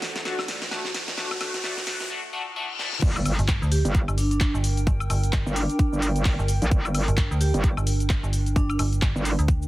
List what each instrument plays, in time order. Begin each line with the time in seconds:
Already playing: analog synth pad A3 D4 F#4 D5, ambient pad D4 A4 F#5, riser
0.02 snare, open hi-hat
0.16 snare, closed hi-hat
0.25 synth stab A3 D4 F#4, vibraphone F#4, snare, closed hi-hat
0.39 snare, high woodblock
0.48 snare, open hi-hat
0.62 snare, open hi-hat
0.71 synth stab A3 D4 F#4, vibraphone F#4, snare, closed hi-hat
0.85 snare
0.94 snare, open hi-hat
1.08 snare, closed hi-hat
1.17 synth stab A3 D4 F#4, vibraphone F#4, snare, closed hi-hat
1.31 snare, high woodblock
1.41 synth stab A3 D4 F#4, vibraphone F#4, snare, open hi-hat, high woodblock
1.54 snare, closed hi-hat
1.64 synth stab A3 D4 F#4, vibraphone F#4, snare, closed hi-hat
1.77 snare
1.87 synth stab A3 D4 F#4, vibraphone F#4, snare, open hi-hat
2.00 snare, closed hi-hat
2.10 synth stab A3 D4 F#4, reverse cymbal
2.33 synth stab A3 D4 F#4
2.56 synth stab A3 D4 F#4
2.79 synth stab A3 D4 F#4, snare
2.93 snare
3.02 wobble bass G1, ambient pad D4, kick, closed hi-hat, crash, impact, shaker
3.16 high woodblock, shaker
3.25 open hi-hat, high woodblock, shaker
3.35 fm bass G1, ambient pad A#4, closed hi-hat
3.39 shaker
3.48 kick, clap, closed hi-hat, shaker
3.56 ambient pad G5
3.62 fm bass D2, shaker
3.72 vibraphone G4, open hi-hat, shaker
3.85 wobble bass G1, closed hi-hat, shaker
3.95 kick, closed hi-hat, shaker
4.08 fm bass G1, high woodblock, shaker
4.18 vibraphone D4, open hi-hat, shaker
4.31 vibraphone D4, closed hi-hat, shaker
4.40 kick, clap, closed hi-hat, shaker
4.54 fm bass G1, shaker
4.64 open hi-hat, shaker
4.77 closed hi-hat, shaker
4.87 fm bass G1, kick, closed hi-hat, shaker
5.00 high woodblock, shaker
5.10 fm bass G1, open hi-hat, high woodblock, shaker
5.23 closed hi-hat, shaker
5.33 fm bass G1, kick, clap, closed hi-hat, shaker
5.46 wobble bass G1, shaker
5.56 vibraphone D4, open hi-hat, shaker
5.69 closed hi-hat, shaker
5.79 kick, closed hi-hat, shaker
5.93 wobble bass G1, shaker
6.02 open hi-hat, shaker
6.16 closed hi-hat, shaker
6.25 wobble bass G1, kick, clap, open hi-hat, shaker
6.39 fm bass G1, shaker
6.48 open hi-hat, shaker
6.62 wobble bass A#1, closed hi-hat, shaker
6.71 wobble bass G1, kick, closed hi-hat, shaker
6.85 high woodblock, shaker
6.95 open hi-hat, high woodblock, shaker
7.08 fm bass G1, closed hi-hat, shaker
7.17 kick, clap, closed hi-hat, shaker
7.31 fm bass D2, shaker
7.41 vibraphone G4, open hi-hat, shaker
7.54 wobble bass G1, closed hi-hat, shaker
7.64 kick, closed hi-hat, shaker
7.77 fm bass G1, high woodblock, shaker
7.87 open hi-hat, shaker
8.00 closed hi-hat, shaker
8.09 kick, clap, closed hi-hat, shaker
8.23 fm bass G1, shaker
8.33 open hi-hat, shaker
8.46 closed hi-hat, shaker
8.56 fm bass G1, vibraphone D4, kick, closed hi-hat, shaker
8.69 vibraphone D4, high woodblock, shaker
8.79 fm bass G1, open hi-hat, high woodblock, shaker
8.93 closed hi-hat, shaker
9.02 fm bass G1, kick, clap, closed hi-hat, shaker
9.16 wobble bass G1, shaker
9.25 open hi-hat, shaker
9.39 fm bass D2, closed hi-hat, shaker
9.48 kick, closed hi-hat, shaker
9.62 shaker